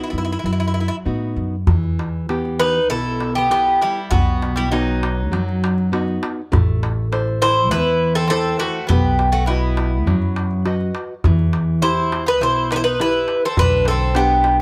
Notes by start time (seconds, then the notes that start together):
Already playing: B3 D#4 F#4
0.03 E4
0.10 F#2 E4
0.18 E4
0.25 E4
0.32 E4
0.39 E4
0.44 F#2 F#3 E4
0.53 E4
0.60 E4
0.68 E4
0.74 E4
0.81 E4
0.88 E4
1.05 A2 B3 D#4 F#4
1.36 F#2
1.67 E2 E3, darbuka dum
1.84 darbuka tek
1.99 darbuka tek
2.29 E3 B3 G4, darbuka tek
2.45 darbuka tek
2.59 D#4 B4, darbuka tek
2.90 B1 B2 E4 A4, darbuka tek
3.06 darbuka tek
3.20 darbuka tek
3.35 B3 G4, darbuka tek
3.50 B3 E4 G4, darbuka tek
3.67 darbuka tek
3.82 G3 E4, darbuka tek
4.11 B1 B2 B3 F#4, darbuka dum
4.28 darbuka tek
4.42 darbuka tek
4.56 G3 E4
4.71 F#3 B3 D#4 F#4, darbuka tek
4.88 darbuka tek
5.03 darbuka tek
5.32 F#2 F#3, darbuka tek
5.49 darbuka tek
5.64 darbuka tek
5.78 darbuka tek
5.92 B3 D#4 F#4, darbuka tek
6.08 darbuka tek
6.23 darbuka tek
6.52 A1 A3, darbuka dum
6.68 darbuka tek
6.83 darbuka tek
7.12 E4 A4 C5, darbuka tek
7.28 darbuka tek
7.42 E4 C5, darbuka tek
7.71 E2 E3 E4 B4, darbuka tek
7.87 darbuka tek
8.15 C4 A4, darbuka tek
8.28 C4 E4 A4, darbuka tek
8.32 C5
8.46 darbuka tek
8.59 A3 F#4, darbuka tek
8.87 B1 B3 G4, darbuka dum
9.05 darbuka tek
9.19 darbuka tek
9.32 A3 F#4
9.46 B3 E4 F#4 B4, darbuka tek
9.50 D#5
9.63 darbuka tek
9.77 darbuka tek
10.07 F#2 F#3, darbuka tek, darbuka dum
10.22 darbuka tek
10.36 darbuka tek
10.51 darbuka tek
10.66 F#4 B4 D#5, darbuka tek
10.81 darbuka tek
10.95 darbuka tek
11.24 E2 E3, darbuka dum
11.39 darbuka tek
11.53 darbuka tek
11.82 E4 G4 C5, darbuka tek
11.98 darbuka tek
12.12 darbuka tek
12.26 D#4 B4
12.41 B1 B2 E4 C5, darbuka tek
12.56 darbuka tek
12.71 D#4 B4, darbuka tek
12.76 E4 C5
12.84 D#4 B4, darbuka tek
13.00 E4 G4 B4, darbuka tek
13.14 darbuka tek
13.28 darbuka tek
13.45 C4 A4
13.57 B1 D3 D4 B4, darbuka dum
13.71 darbuka tek
13.85 A4, darbuka tek
13.90 C4
14.15 B3 D4 G4 F#5, darbuka tek
14.29 darbuka tek
14.44 darbuka tek